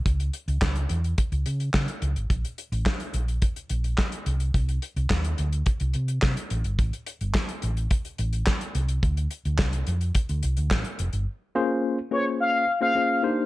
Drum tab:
HH |xxxx-xxxxxxx-xxx|xxxx-xxxxxxx-xxx|xxxx-xxxxxxx-xxx|xxxx-xxxxxxx-xxx|
CP |----x-------x---|----x-------x---|----x-------x---|----x-------x---|
SD |----o-------o---|----o-------o---|----o-------o---|----o-------o---|
BD |o---o---o---o---|o---o---o---o---|o---o---o---o---|o---o---o---o---|

HH |xxxx-xxxxxxx-xxx|----------------|
CP |----x-------x---|----------------|
SD |----o-------o---|----------------|
BD |o---o---o---o---|----------------|